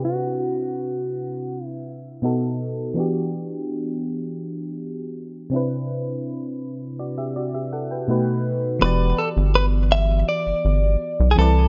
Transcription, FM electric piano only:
\new Staff \with { instrumentName = "FM electric piano" } { \time 4/4 \key e \minor \tempo 4 = 82 << { r1 | r1 | r4. <fis' d''>16 <g' e''>16 <fis' d''>16 <g' e''>16 <a' fis''>16 <b' g''>8 r8. | r1 | } \\ { <c c' d' e' b'>2. <b, b dis' fis' a'>4 | <e b d' fis' g'>2.~ <e b d' fis' g'>8 <c c' d' e' b'>8~ | <c c' d' e' b'>2. <b, a dis' fis' b'>4 | <e b fis' g' d''>2.~ <e b fis' g' d''>8 <e c' e' b' d''>8 | } >> }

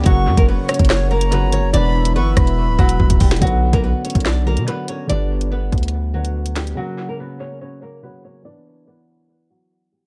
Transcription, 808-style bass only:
\new Staff \with { instrumentName = "808-style bass" } { \clef bass \time 4/4 \key b \minor \tempo 4 = 143 fis,,8 fis,16 fis,,8 r8 fis,,4. g,,16. fis,,16. | e,,4 g,,8 e,,8. d,,16 e,,8 e,,16 d,,16 e,,8 | b,,8. b,,8 r8 b,,4 b,16 r4 | g,,4. d,2~ d,8 |
r1 | r1 | }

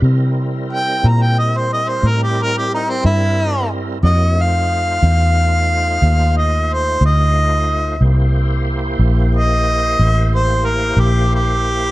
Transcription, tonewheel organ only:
\new Staff \with { instrumentName = "Tonewheel organ" } { \time 12/8 \key c \mixolydian \tempo 4. = 60 <g c' e' bes'>1. | <bes e' fis' des''>8 <a ees' f' c''>1~ <a ees' f' c''>4. | <bes e' g' c''>1. | }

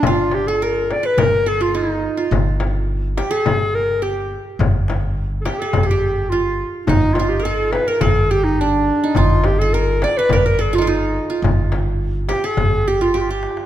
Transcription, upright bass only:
\new Staff \with { instrumentName = "Upright bass" } { \clef bass \time 4/4 \tempo 4 = 105 g,,2 g,,2 | g,,2 g,,2 | g,,2 g,,2 | g,,2 g,,2 |
g,,2 g,,2 | g,,2 g,,2 | }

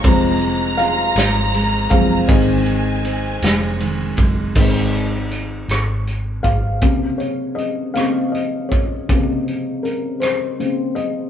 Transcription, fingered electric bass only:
\new Staff \with { instrumentName = "Fingered electric bass" } { \clef bass \time 6/8 \key bes \minor \tempo 4. = 53 f,,4. aes,,4 ges,,8 | aes,,4. f,,4 ges,,8 | aes,,4. aes,,4 aes,,8 | r2. |
r2. | }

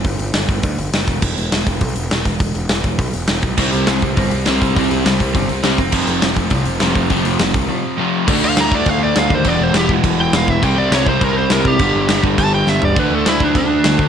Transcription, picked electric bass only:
\new Staff \with { instrumentName = "Picked electric bass" } { \clef bass \time 4/4 \key g \major \tempo 4 = 204 g,,8 g,,8 g,,8 g,,8 d,8 g,,8 fis,,8 e,,8 | e,,8 e,,8 e,,8 e,,8 b,,8 e,,8 e,,8 e,,8 | e,,8 e,,8 e,,8 e,,8 b,,8 e,,8 e,,8 b,,8 | c,8 c,8 c,8 c,8 g,,8 c,8 c,8 c,8 |
c,8 c,8 c,8 c,8 g,,8 c,8 c,8 f,,8 | f,,8 f,,8 f,,8 f,,8 c,8 f,,8 f,,8 f,,8 | f,,8 f,,8 f,,8 c,8 r2 | d,8 d,8 d,4 d,4 d,8 ees,8 |
e,,8 e,,8 e,,4 e,,4 e,,8 e,,8 | c,8 c,8 c,4 c,4 c,8 c,8 | g,,8 g,,8 g,,4 g,,4 g,,8 g,,8 | d,8 d,8 d,4 d,4 d,8 d,8 | }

